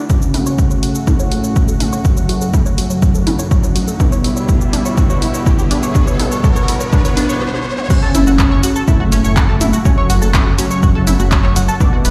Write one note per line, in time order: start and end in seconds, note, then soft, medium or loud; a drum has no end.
0.10 3.96 C#3 medium
0.10 3.96 A3 medium
0.10 0.98 C#4 loud
0.10 3.96 F#4 medium
0.10 0.19 F#4 medium
0.10 kick loud
0.10 riser medium
0.10 shaker medium
0.22 0.26 A4 medium
0.22 shaker medium
0.34 0.65 F#1 loud
0.34 0.41 E4 loud
0.34 open hi-hat loud
0.34 mid tom medium
0.46 0.56 C#5 loud
0.46 shaker medium
0.58 0.62 F#4 medium
0.58 kick loud
0.58 shaker medium
0.71 0.79 F#1 loud
0.71 0.77 C#5 medium
0.71 shaker medium
0.83 0.92 F#4 medium
0.83 open hi-hat loud
0.95 0.99 A4 medium
0.95 shaker medium
1.07 1.38 F#1 loud
1.07 1.95 A3 loud
1.07 1.14 E4 loud
1.07 kick loud
1.07 mid tom medium
1.07 shaker medium
1.20 1.29 C#5 loud
1.20 shaker medium
1.32 1.36 F#4 medium
1.32 open hi-hat loud
1.44 1.74 F#1 medium
1.44 1.50 C#5 medium
1.44 shaker medium
1.56 1.66 F#4 medium
1.56 kick loud
1.56 shaker medium
1.68 1.72 A4 medium
1.68 shaker medium
1.80 1.89 F#1 medium
1.80 1.87 E4 loud
1.80 open hi-hat loud
1.80 mid tom medium
1.93 2.02 C#5 loud
1.93 shaker medium
2.05 2.68 F#3 loud
2.05 2.09 F#4 medium
2.05 kick loud
2.05 shaker medium
2.17 2.23 C#5 medium
2.17 shaker medium
2.29 2.60 F#1 loud
2.29 2.39 F#4 medium
2.29 open hi-hat loud
2.41 2.45 A4 medium
2.41 shaker medium
2.53 2.60 E4 loud
2.53 kick loud
2.53 mid tom medium
2.53 shaker medium
2.66 2.74 F#1 loud
2.66 2.75 C#5 loud
2.66 shaker medium
2.78 3.90 F#3 loud
2.78 2.82 F#4 medium
2.78 open hi-hat loud
2.90 2.97 C#5 medium
2.90 shaker medium
3.02 3.33 F#1 loud
3.02 3.12 F#4 medium
3.02 kick loud
3.02 shaker medium
3.15 3.18 A4 medium
3.15 shaker medium
3.27 3.33 E4 loud
3.27 open hi-hat loud
3.27 mid tom medium
3.39 3.70 F#1 medium
3.39 3.48 C#5 loud
3.39 shaker medium
3.51 3.55 F#4 medium
3.51 kick loud
3.51 shaker medium
3.63 3.70 C#5 medium
3.63 shaker medium
3.75 3.84 F#1 medium
3.75 3.85 F#4 medium
3.75 open hi-hat loud
3.88 3.92 A4 medium
3.88 shaker medium
4.00 7.38 D3 medium
4.00 7.38 G3 medium
4.00 4.96 B3 loud
4.00 4.06 D4 medium
4.00 7.38 E4 medium
4.00 kick loud
4.00 mid tom medium
4.00 shaker medium
4.12 4.22 C#5 loud
4.12 shaker medium
4.24 4.55 E1 loud
4.24 4.28 E4 medium
4.24 open hi-hat loud
4.37 4.43 C#5 medium
4.37 shaker medium
4.49 4.58 E4 medium
4.49 kick loud
4.49 shaker medium
4.61 4.69 E1 loud
4.61 4.65 G4 medium
4.61 shaker medium
4.73 4.79 D4 loud
4.73 open hi-hat loud
4.73 mid tom medium
4.85 4.95 C#5 medium
4.85 shaker medium
4.97 5.28 E1 loud
4.97 5.93 B3 loud
4.97 5.04 D4 medium
4.97 kick loud
4.97 shaker medium
5.10 5.19 C#5 loud
5.10 shaker medium
5.22 5.26 E4 medium
5.22 open hi-hat loud
5.34 5.65 E1 medium
5.34 5.41 C#5 medium
5.34 shaker medium
5.46 5.56 E4 medium
5.46 kick loud
5.46 mid tom medium
5.46 shaker medium
5.59 5.62 G4 medium
5.59 shaker medium
5.71 5.79 E1 medium
5.71 5.77 D4 loud
5.71 open hi-hat loud
5.83 5.92 C#5 loud
5.83 shaker medium
5.95 6.42 B3 loud
5.95 6.01 D4 medium
5.95 kick loud
5.95 shaker medium
6.07 6.17 C#5 loud
6.07 shaker medium
6.19 6.50 E1 loud
6.19 6.23 E4 medium
6.19 open hi-hat loud
6.19 mid tom loud
6.32 6.38 C#5 medium
6.32 shaker medium
6.44 6.91 B3 loud
6.44 6.50 D4 loud
6.44 kick loud
6.44 shaker medium
6.56 6.65 E1 loud
6.56 6.66 C#5 loud
6.56 shaker medium
6.68 6.72 E4 medium
6.68 open hi-hat loud
6.81 6.87 C#5 medium
6.81 shaker medium
6.92 7.23 E1 loud
6.92 7.15 B3 loud
6.92 6.99 D4 loud
6.92 kick loud
6.92 mid tom loud
6.92 shaker medium
7.05 7.14 C#5 loud
7.05 open hi-hat medium
7.05 shaker medium
7.17 7.39 B3 loud
7.17 7.23 D4 loud
7.17 open hi-hat loud
7.29 7.41 E1 medium
7.29 7.39 C#5 loud
7.29 shaker medium
7.42 high tom medium
7.54 high tom medium
7.78 mid tom medium
7.90 11.77 C#3 medium
7.90 11.77 A3 medium
7.90 8.78 C#4 loud
7.90 7.97 F#4 medium
7.90 11.77 F#4 medium
7.90 7.97 F#5 medium
7.90 kick loud
7.90 crash loud
7.90 shaker medium
8.03 8.09 A4 medium
8.03 8.09 A5 medium
8.15 8.45 F#1 loud
8.15 8.24 E4 medium
8.15 8.24 E5 medium
8.15 open hi-hat loud
8.15 mid tom medium
8.15 shaker medium
8.27 8.31 F#4 medium
8.27 8.31 F#5 medium
8.27 shaker medium
8.39 8.49 C#4 medium
8.39 8.49 C#5 medium
8.39 kick loud
8.39 clap loud
8.39 shaker medium
8.51 8.60 F#1 loud
8.51 8.61 C#5 medium
8.51 8.61 C#6 medium
8.63 8.70 F#4 medium
8.63 8.70 F#5 medium
8.63 open hi-hat loud
8.63 shaker medium
8.76 8.82 A4 medium
8.76 8.82 A5 medium
8.76 shaker medium
8.88 9.18 F#1 loud
8.88 9.76 A3 loud
8.88 8.97 E4 medium
8.88 8.97 E5 medium
8.88 kick loud
8.88 mid tom medium
8.88 shaker medium
9.00 9.04 F#4 medium
9.00 9.04 F#5 medium
9.12 9.22 C#4 medium
9.12 9.22 C#5 medium
9.12 open hi-hat loud
9.12 shaker medium
9.24 9.55 F#1 medium
9.24 9.34 C#5 medium
9.24 9.34 C#6 medium
9.24 shaker medium
9.37 9.43 F#4 medium
9.37 9.43 F#5 medium
9.37 kick loud
9.37 clap loud
9.37 shaker medium
9.49 9.55 A4 medium
9.49 9.55 A5 medium
9.61 9.69 F#1 medium
9.61 9.71 E4 medium
9.61 9.71 E5 medium
9.61 open hi-hat loud
9.61 mid tom medium
9.61 shaker medium
9.73 9.77 F#4 medium
9.73 9.77 F#5 medium
9.73 shaker medium
9.85 10.49 F#3 loud
9.85 9.95 C#4 medium
9.85 9.95 C#5 medium
9.85 kick loud
9.85 shaker medium
9.98 10.07 C#5 medium
9.98 10.07 C#6 medium
10.10 10.40 F#1 loud
10.10 10.16 F#4 medium
10.10 10.16 F#5 medium
10.10 open hi-hat loud
10.10 shaker medium
10.22 10.28 A4 medium
10.22 10.28 A5 medium
10.22 shaker medium
10.34 10.44 E4 medium
10.34 10.44 E5 medium
10.34 kick loud
10.34 clap loud
10.34 mid tom medium
10.34 shaker medium
10.46 10.55 F#1 loud
10.46 10.50 F#4 medium
10.46 10.50 F#5 medium
10.58 11.71 F#3 loud
10.58 10.68 C#4 medium
10.58 10.68 C#5 medium
10.58 open hi-hat loud
10.58 shaker medium
10.71 10.80 C#5 medium
10.71 10.80 C#6 medium
10.71 shaker medium
10.83 11.13 F#1 loud
10.83 10.89 F#4 medium
10.83 10.89 F#5 medium
10.83 kick loud
10.83 shaker medium
10.95 11.01 A4 medium
10.95 11.01 A5 medium
11.07 11.17 E4 medium
11.07 11.17 E5 medium
11.07 open hi-hat loud
11.07 mid tom medium
11.07 shaker medium
11.20 11.50 F#1 medium
11.20 11.23 F#4 medium
11.20 11.23 F#5 medium
11.20 shaker medium
11.32 11.41 C#4 medium
11.32 11.41 C#5 medium
11.32 kick loud
11.32 clap loud
11.32 shaker medium
11.44 11.53 C#5 medium
11.44 11.53 C#6 medium
11.44 clap soft
11.56 11.65 F#1 medium
11.56 11.62 F#4 medium
11.56 11.62 F#5 medium
11.56 open hi-hat loud
11.56 shaker medium
11.68 11.75 A4 medium
11.68 11.75 A5 medium
11.68 shaker medium
11.80 12.11 D3 medium
11.80 12.11 G3 medium
11.80 12.11 B3 loud
11.80 11.90 D4 medium
11.80 12.11 E4 medium
11.80 11.90 D5 medium
11.80 kick loud
11.80 mid tom loud
11.80 shaker medium
11.93 11.97 F#4 medium
11.93 11.97 F#5 medium
12.05 12.11 E1 loud
12.05 12.11 B3 medium
12.05 12.11 B4 medium
12.05 open hi-hat loud
12.05 shaker medium